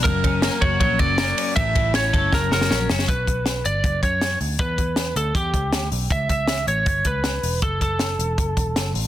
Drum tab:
RD |x-x-x-x-x-x-x-x-|x-x-x-x---------|----------------|----------------|
HH |p-------------o-|p---------------|x-x-x-x-x-x-x-o-|x-x-x-x-x-x-x-o-|
SD |----o-------o---|----o---o-ooo-oo|----o-------o---|----o-------o---|
BD |o-o---o-o-o-----|o-o---o-o-------|o-o-----o-o-----|o-o-----o-o-----|

RD |----------------|----------------|
HH |x-x-x-x-x-x-x-o-|x-x-x-x-x-x-x-o-|
SD |----o-------o---|----o-------o---|
BD |o-o-----o-o-----|o-o-----o-o-----|